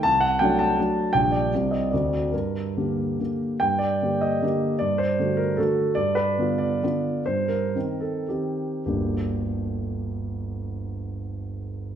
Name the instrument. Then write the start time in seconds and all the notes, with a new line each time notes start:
grand piano
0.03 C2 A5
0.20 F#5
0.39 F#3 A3 D4 G5
0.59 A5
0.78 F#3 A3 D4
1.13 A#1 G3 D4 G4 G5
1.32 D5
1.53 C2 G3 C4 G4
1.71 D#5
1.91 D2 D3 C4 F#4 D5
2.31 G2 A#4
2.77 D3 A#3 G4
3.20 D3 A#3 G4
3.60 G2 G5
3.79 D5
4.02 D3 A#3 G4
4.21 D#5
4.42 D3 A#3 G4
4.79 G2 D5
4.98 C5
5.19 D3 A3 F#4
5.37 A#4
5.57 D3 A3 F#4 A4
5.95 G2 D5
6.15 B4
6.39 D3 B3 F4
6.58 D5
6.83 D3 B3 F4
7.26 G2 C5
7.48 A#4
7.75 D#3 C4 D#4
8.00 A4
8.28 D#3 C4 D#4 G4
8.86 G1 D2 G3 A#3 D4 G4